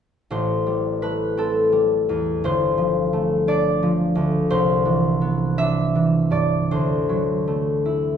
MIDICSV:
0, 0, Header, 1, 2, 480
1, 0, Start_track
1, 0, Key_signature, 0, "minor"
1, 0, Tempo, 715137
1, 203, Time_signature, 6, 3, 24, 8
1, 1161, Tempo, 693642
1, 3561, Tempo, 744417
1, 4521, Tempo, 778210
1, 5436, End_track
2, 0, Start_track
2, 0, Title_t, "Harp"
2, 0, Program_c, 0, 46
2, 205, Note_on_c, 0, 33, 37
2, 210, Note_on_c, 0, 72, 56
2, 446, Note_on_c, 0, 55, 30
2, 685, Note_on_c, 0, 71, 51
2, 689, Note_on_c, 0, 57, 29
2, 922, Note_on_c, 0, 60, 33
2, 929, Note_on_c, 0, 69, 55
2, 1149, Note_off_c, 0, 55, 0
2, 1157, Note_on_c, 0, 55, 34
2, 1411, Note_on_c, 0, 40, 33
2, 1650, Note_off_c, 0, 72, 0
2, 1652, Note_on_c, 0, 31, 46
2, 1659, Note_on_c, 0, 72, 67
2, 1663, Note_off_c, 0, 71, 0
2, 1665, Note_off_c, 0, 33, 0
2, 1667, Note_off_c, 0, 40, 0
2, 1887, Note_on_c, 0, 53, 38
2, 2122, Note_off_c, 0, 57, 0
2, 2130, Note_on_c, 0, 57, 35
2, 2370, Note_on_c, 0, 62, 43
2, 2373, Note_on_c, 0, 74, 77
2, 2604, Note_off_c, 0, 53, 0
2, 2612, Note_on_c, 0, 53, 38
2, 2839, Note_on_c, 0, 38, 36
2, 3072, Note_off_c, 0, 72, 0
2, 3081, Note_on_c, 0, 36, 52
2, 3081, Note_on_c, 0, 72, 63
2, 3090, Note_off_c, 0, 69, 0
2, 3091, Note_off_c, 0, 38, 0
2, 3091, Note_off_c, 0, 57, 0
2, 3092, Note_off_c, 0, 31, 0
2, 3094, Note_off_c, 0, 53, 0
2, 3324, Note_on_c, 0, 52, 33
2, 3571, Note_on_c, 0, 59, 37
2, 3610, Note_off_c, 0, 60, 0
2, 3800, Note_off_c, 0, 62, 0
2, 3806, Note_on_c, 0, 62, 40
2, 3807, Note_on_c, 0, 76, 73
2, 3836, Note_off_c, 0, 55, 0
2, 4040, Note_off_c, 0, 52, 0
2, 4048, Note_on_c, 0, 52, 35
2, 4272, Note_off_c, 0, 74, 0
2, 4275, Note_on_c, 0, 43, 32
2, 4282, Note_on_c, 0, 74, 55
2, 4529, Note_off_c, 0, 72, 0
2, 4536, Note_on_c, 0, 38, 38
2, 4537, Note_on_c, 0, 72, 52
2, 4540, Note_off_c, 0, 43, 0
2, 4544, Note_off_c, 0, 59, 0
2, 4545, Note_off_c, 0, 36, 0
2, 4548, Note_off_c, 0, 52, 0
2, 4771, Note_on_c, 0, 54, 28
2, 5007, Note_on_c, 0, 57, 29
2, 5242, Note_on_c, 0, 64, 34
2, 5436, Note_off_c, 0, 38, 0
2, 5436, Note_off_c, 0, 54, 0
2, 5436, Note_off_c, 0, 57, 0
2, 5436, Note_off_c, 0, 62, 0
2, 5436, Note_off_c, 0, 64, 0
2, 5436, Note_off_c, 0, 72, 0
2, 5436, Note_off_c, 0, 74, 0
2, 5436, Note_off_c, 0, 76, 0
2, 5436, End_track
0, 0, End_of_file